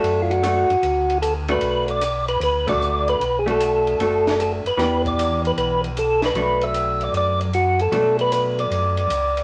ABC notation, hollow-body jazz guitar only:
X:1
M:4/4
L:1/8
Q:"Swing" 1/4=152
K:Bm
V:1 name="Hollow-body jazz guitar"
[A,DF]2 [A,DF] z4 [A,DF]- | [A,DF]2 z3 [A,DF]3 | z [A,DF]3 [A,DF]3 z | [E,B,DG]4- [E,B,DG] z3 |
[F,A,D]4- [F,A,D] z3 | [F,A,D]4- [F,A,D] z3 |]